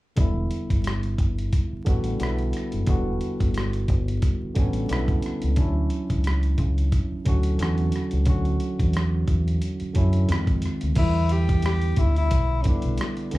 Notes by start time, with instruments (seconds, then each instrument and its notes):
0.16 fingered electric bass E1, tine electric piano D3 G3 B3, kick, closed hi-hat
0.20 tine electric piano E4
0.51 closed hi-hat
0.70 fingered electric bass G1, kick, closed hi-hat
0.84 cross-stick, closed hi-hat
1.03 closed hi-hat
1.18 fingered electric bass G1, kick, closed hi-hat
1.38 closed hi-hat
1.53 kick, closed hi-hat
1.73 muted fingered electric bass stroke
1.85 fingered electric bass A1, tine electric piano D3 G3 B3, kick, closed hi-hat
1.89 tine electric piano F#4
2.04 closed hi-hat
2.19 fingered electric bass B1, tine electric piano D3 G3 B3, closed hi-hat
2.23 tine electric piano E4, cross-stick
2.38 closed hi-hat
2.53 cross-stick, closed hi-hat
2.72 fingered electric bass F#1, closed hi-hat
2.87 fingered electric bass E1, tine electric piano D3 G3 B3 F#4, kick, closed hi-hat
3.21 closed hi-hat
3.40 fingered electric bass G1, kick, closed hi-hat
3.54 cross-stick, closed hi-hat
3.73 closed hi-hat
3.88 fingered electric bass G1, kick, closed hi-hat
4.08 closed hi-hat
4.22 kick, closed hi-hat
4.43 muted fingered electric bass stroke
4.55 fingered electric bass A1, tine electric piano D3 G3 B3, kick, closed hi-hat
4.59 tine electric piano C#4
4.73 closed hi-hat
4.88 fingered electric bass B1, tine electric piano D3 G3 B3, closed hi-hat
4.93 tine electric piano E4, cross-stick
5.08 kick, closed hi-hat
5.22 cross-stick, closed hi-hat
5.42 fingered electric bass C#2, closed hi-hat
5.56 fingered electric bass D2, tine electric piano E3 C#4 D4, kick, closed hi-hat
5.60 tine electric piano F#3 E4
5.90 closed hi-hat
6.10 fingered electric bass C#2, kick, closed hi-hat
6.24 cross-stick, closed hi-hat
6.43 closed hi-hat
6.58 fingered electric bass C#2, kick, closed hi-hat
6.78 closed hi-hat
6.92 kick, closed hi-hat
7.12 muted fingered electric bass stroke
7.25 fingered electric bass D2, tine electric piano D3 F#3 C#4, kick, closed hi-hat
7.29 tine electric piano F#4
7.43 closed hi-hat
7.58 fingered electric bass E2, tine electric piano D3 F#3 C#4, closed hi-hat
7.62 tine electric piano F#4, cross-stick
7.78 closed hi-hat
7.92 cross-stick, closed hi-hat
8.11 fingered electric bass C#2, closed hi-hat
8.25 fingered electric bass D2, tine electric piano D3 F#3 C#4, kick, closed hi-hat
8.30 tine electric piano F#4
8.45 closed hi-hat
8.60 closed hi-hat
8.79 fingered electric bass E2, kick, closed hi-hat
8.93 cross-stick, closed hi-hat
9.27 fingered electric bass E2, kick, closed hi-hat
9.48 closed hi-hat
9.62 closed hi-hat
9.80 muted fingered electric bass stroke, closed hi-hat
9.94 fingered electric bass F#2, tine electric piano D3 F#3 C#4 E4, kick, closed hi-hat
10.13 closed hi-hat
10.28 fingered electric bass F2, tine electric piano D#3 G3 C4 F4, closed hi-hat
10.32 tine electric piano G#3, cross-stick
10.47 kick, closed hi-hat
10.62 cross-stick, closed hi-hat
10.81 fingered electric bass D2, closed hi-hat
10.95 fingered electric bass E2, tine electric piano D3 G3 B3, tenor saxophone E4, kick, closed hi-hat, crash
10.99 tine electric piano E4
11.29 tenor saxophone G4, closed hi-hat
11.49 kick, closed hi-hat
11.62 tenor saxophone G4, cross-stick, closed hi-hat
11.82 closed hi-hat
11.96 fingered electric bass D2, tenor saxophone E4, kick, closed hi-hat
12.16 tenor saxophone E4, closed hi-hat
12.31 fingered electric bass B1, kick, closed hi-hat
12.62 tine electric piano D3 G3, tenor saxophone C#4, kick, closed hi-hat
12.66 tine electric piano B3 E4, tenor saxophone D4
12.82 fingered electric bass B1, closed hi-hat
12.98 cross-stick, closed hi-hat
13.17 closed hi-hat
13.31 fingered electric bass D2, tine electric piano D3 G3 B3, closed hi-hat